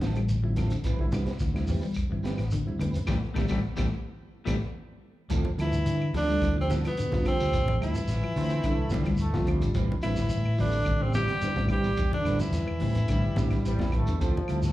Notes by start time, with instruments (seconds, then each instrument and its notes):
Already playing: reed electric piano D3 G3 C4 D4
0.01 fingered electric bass A1, clean electric guitar E3 F3 C4 E4 A4, snare, closed hi-hat, shekere
0.16 clean electric guitar G3, closed hi-hat, claves, shekere
0.29 closed hi-hat, high conga, shekere
0.43 reed electric piano D3 G3 C4 E4, clean electric guitar F3
0.56 clean electric guitar F3 C4 E4 A4, snare, closed hi-hat, high conga, low conga, claves, shekere
0.70 clean electric guitar D3, closed hi-hat, shekere
0.84 fingered electric bass A1, clean electric guitar E3 G3 C4 E4 B4, kick, closed hi-hat, high conga, shekere
0.99 reed electric piano D3 G3 C4 E4, kick
1.12 fingered electric bass C2, clean electric guitar D3 G3 C4 E4 B4, snare, closed hi-hat, high conga, claves, shekere
1.26 snare, closed hi-hat, shekere
1.39 fingered electric bass D2, clean electric guitar E3, kick, snare, closed hi-hat, shekere
1.53 reed electric piano D3 G3 C4 E4, snare, high conga, claves
1.67 fingered electric bass E2, clean electric guitar F3 G3 C4 E4 B4, open hi-hat, low conga, shekere
1.81 clean electric guitar G3, shekere
1.94 kick, closed hi-hat, claves, shekere
1.99 high conga
2.10 fingered electric bass G1, reed electric piano D3 G3 C4 E4, clean electric guitar E3
2.23 clean electric guitar G3 C4 E4 B4, snare, closed hi-hat, shekere
2.38 fingered electric bass A1, clean electric guitar E3, snare, closed hi-hat, claves, shekere
2.51 fingered electric bass A1, clean electric guitar D3, closed hi-hat, high conga, shekere
2.66 reed electric piano D3 G3 C4 E4, high conga
2.79 fingered electric bass D2, clean electric guitar D3 C4 E4 B4, muted clean electric guitar stroke, closed hi-hat, high conga, low conga, claves, shekere
2.94 closed hi-hat, low conga, shekere
3.06 fingered electric bass A1, clean electric guitar E3 G3 A3 E4 G4 A4, reed electric piano G3 A3 C4, kick, high conga, claves, shekere
3.10 snare
3.34 fingered electric bass A1, clean electric guitar E3 G3 A3 E4 G4 A4, reed electric piano G3 A3 C4, kick, snare, high conga, claves, shekere
3.48 fingered electric bass A1, clean electric guitar E3 G3 A3 E4 G4 A4, reed electric piano G3 A3 C4, kick, snare, high conga, claves, shekere
3.76 fingered electric bass A1, clean electric guitar E3 G3 A3 E4 G4 A4, reed electric piano G3 A3 C4, kick, snare, high conga, claves, shekere
4.45 fingered electric bass A1, clean electric guitar E3 G3 A3 E4 G4 A4, reed electric piano G3 A3 C4, kick, snare, high conga, claves, shekere
5.30 fingered electric bass D2, clean electric guitar F3 C4 E4 A4, kick, snare, closed hi-hat, low conga, shekere
5.45 high conga
5.57 fingered electric bass D2, reed electric piano D3 G3 C4 E4, trombone E3, clean electric guitar F3 E4 A4, muted clean electric guitar stroke, snare, closed hi-hat, claves, shekere
5.61 tenor saxophone E4
5.73 closed hi-hat, shekere
5.86 fingered electric bass D3, clean electric guitar E3, closed hi-hat, shekere
6.02 claves
6.13 fingered electric bass D2, clean electric guitar F3 C4 E4 A4, tenor saxophone D4, snare, open hi-hat, high conga, shekere
6.18 trombone D3
6.29 clean electric guitar G3, shekere
6.40 fingered electric bass D2, reed electric piano D3 G3 C4 E4, kick, snare, closed hi-hat, high conga, claves, shekere
6.56 fingered electric bass D2, trombone C3, clean electric guitar F3
6.61 tenor saxophone C4
6.68 reed electric piano D3 G3 C4 E4, clean electric guitar F3 C4 E4 A4, snare, closed hi-hat, high conga, shekere
6.85 trombone B2, clean electric guitar F3, tenor saxophone B3, snare, closed hi-hat, claves, shekere
6.97 clean electric guitar D3, closed hi-hat, shekere
7.11 reed electric piano D3 G3 C4 F4, fingered electric bass D3, kick, snare, high conga, low conga
7.25 clean electric guitar D3 F3 C4 E4 A4, tenor saxophone C4, muted fingered electric bass stroke, kick, snare, closed hi-hat, claves, shekere
7.30 trombone C3
7.40 fingered electric bass D2, snare, shekere
7.53 fingered electric bass A1, clean electric guitar F3, kick, closed hi-hat, low conga, shekere
7.68 clean electric guitar F3, high conga
7.80 fingered electric bass D2, reed electric piano D3 G3 C4 E4, clean electric guitar F3 C4 E4 A4, tenor saxophone E4, closed hi-hat, claves, shekere
7.88 trombone E3
7.95 muted clean electric guitar stroke, closed hi-hat, shekere
8.08 fingered electric bass A1, snare, closed hi-hat, shekere
8.23 clean electric guitar F3, claves
8.36 fingered electric bass D3, clean electric guitar F3 A3 C4 E4 A4, trombone section C4, open hi-hat, high conga, shekere
8.50 closed hi-hat, shekere
8.63 reed electric piano D3 G3 C4 E4, fingered electric bass D3, clean electric guitar D3, trombone section A3, kick, closed hi-hat, claves, shekere
8.77 fingered electric bass C2
8.89 reed electric piano D3 G3 C4 E4, fingered electric bass D3, clean electric guitar E3 F3 C4 E4 A4, trombone section G3, kick, snare, closed hi-hat, shekere
8.94 high conga
9.05 fingered electric bass D2, clean electric guitar G3, kick, snare, closed hi-hat, claves, shekere
9.17 trombone section A3, closed hi-hat, shekere
9.34 reed electric piano D3 G3 C4 F4, clean electric guitar F3, kick, snare, high conga, low conga
9.46 fingered electric bass D2, clean electric guitar F3 C4 E4 A4, trombone section G3, kick, closed hi-hat, claves, shekere
9.62 fingered electric bass A1, clean electric guitar D3, closed hi-hat, shekere
9.74 fingered electric bass A1, clean electric guitar E3 G3 C4 E4 B4, kick, closed hi-hat, low conga, shekere
9.92 high conga
10.01 fingered electric bass A1, reed electric piano D3 G3 C4 E4, clean electric guitar D3 G3 C4 E4 B4, trombone E3, tenor saxophone E4, closed hi-hat, claves, shekere
10.16 snare, closed hi-hat, high conga, shekere
10.29 fingered electric bass A2, clean electric guitar E3, closed hi-hat, shekere
10.45 claves
10.58 fingered electric bass A1, trombone D3, clean electric guitar F3 G3 C4 E4 B4, tenor saxophone D4, open hi-hat, high conga, shekere
10.71 shekere
10.84 fingered electric bass A1, reed electric piano D3 G3 C4 D4, kick, closed hi-hat, high conga, claves, shekere
11.01 fingered electric bass A1, trombone C3, clean electric guitar E3, tenor saxophone C4
11.12 reed electric piano D3 G3 C4 E4, clean electric guitar G3 C4 E4 B4, trombone G3, tenor saxophone G4, snare, closed hi-hat, high conga, shekere
11.27 clean electric guitar E3, snare, closed hi-hat, claves, shekere
11.41 clean electric guitar D3 G3 C4 E4 B4, snare, closed hi-hat, shekere
11.55 fingered electric bass A2, reed electric piano D3 G3 C4 E4, kick, snare, high conga, low conga
11.68 clean electric guitar D3 G3 C4 E4 B4, trombone G3, tenor saxophone G4, muted fingered electric bass stroke, kick, closed hi-hat, claves, shekere
11.84 fingered electric bass A1, snare, shekere
11.97 fingered electric bass E2, muted clean electric guitar stroke, kick, closed hi-hat, low conga, shekere
12.12 trombone D3, clean electric guitar E3, tenor saxophone D4, high conga
12.25 fingered electric bass A1, reed electric piano D3 G3 C4 E4, clean electric guitar G3 C4 E4 B4, snare, closed hi-hat, claves, shekere
12.39 trombone E3, clean electric guitar F3, tenor saxophone E4, snare, closed hi-hat, shekere
12.52 fingered electric bass E2, snare, closed hi-hat, shekere
12.67 clean electric guitar E3, claves
12.80 fingered electric bass A2, clean electric guitar E3 G3 C4 E4 B4, open hi-hat, high conga, shekere
12.95 closed hi-hat, low conga, shekere
13.08 fingered electric bass A2, reed electric piano D3 G3 C4 E4, clean electric guitar D3, trombone section G3, kick, closed hi-hat, claves, shekere
13.25 fingered electric bass G1
13.36 fingered electric bass A2, reed electric piano D3 G3 C4 D4, clean electric guitar E3 G3 C4 E4 B4, trombone section G3, kick, snare, closed hi-hat, high conga, shekere
13.51 fingered electric bass A1, clean electric guitar G3, kick, snare, closed hi-hat, claves, shekere
13.64 clean electric guitar G3 C4 E4 B4, trombone section G3, closed hi-hat, shekere
13.79 reed electric piano D3 G3 C4 E4, clean electric guitar G3, kick, snare, high conga, low conga
13.92 fingered electric bass A1, clean electric guitar G3 E4 B4, trombone section A3, kick, closed hi-hat, claves, shekere
14.07 fingered electric bass E2, clean electric guitar D3, closed hi-hat, high conga, shekere
14.19 fingered electric bass D2, trombone section F3, clean electric guitar F3 C4 E4 A4, kick, closed hi-hat, low conga, shekere
14.37 high conga
14.48 fingered electric bass D2, reed electric piano D3 G3 C4 E4, clean electric guitar D3 F3 E4 A4, muted clean electric guitar stroke, closed hi-hat, claves, shekere
14.62 trombone section A3, snare, closed hi-hat, high conga, shekere